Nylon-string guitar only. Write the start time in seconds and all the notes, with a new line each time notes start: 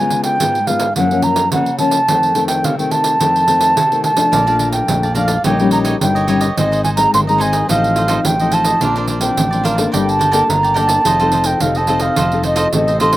Already playing: C#3
0.00 G#3 B3 F4
0.41 G#2 G#3 B3 F4
0.68 G#3 B3 F4
0.96 F#2 F3 A#3 C#4
1.11 F3 A#3 C#4
1.52 C#3 F3 A#3 C#4
1.79 F3 A#3 C#4
2.09 F2 D#3 A3 C4
2.35 D#3 A3 C4
2.65 C3
2.78 D#3 A3 C4
3.20 F2 D#3 A3 C4
3.48 D#3 A3 C4
3.77 C3
3.92 D#3 A3 C4
4.16 F3 A3 D4
4.33 A#2
4.48 F3 A3 D4
4.89 F2 F3 A3 D4
5.16 F3 A3 D4
5.45 A#2 G3 C#4 D#4
5.60 G3 C#4 D#4
6.01 A#2 G3 C#4 D#4
6.27 G3 C#4 D#4
6.57 G#2 G#3 C4 D#4
6.97 G#3 C4 D#4
7.14 D#3
7.29 G#3 C4 D#4
7.70 A2 F3 C4 D#4
8.09 F3 C4 D#4
8.26 A2
8.41 F3 C4 D#4
8.82 A#2 F3 C4 D4
9.22 F3 C4 D4
9.38 F3
9.52 F3 C4 D4
9.78 A#3 D4 A4
9.94 G3
10.33 A#3 D4 A4
10.51 D3
10.77 A#3 D4 A4
11.06 F3 C4 D#4 A4
11.21 C4 D#4 A4
11.62 C3 C4 D#4 A4
11.89 C4 D#4 A4
12.18 F3
12.33 C4 D#4 A4
12.74 C3 C4 D#4 A4
13.01 C4 D#4 A4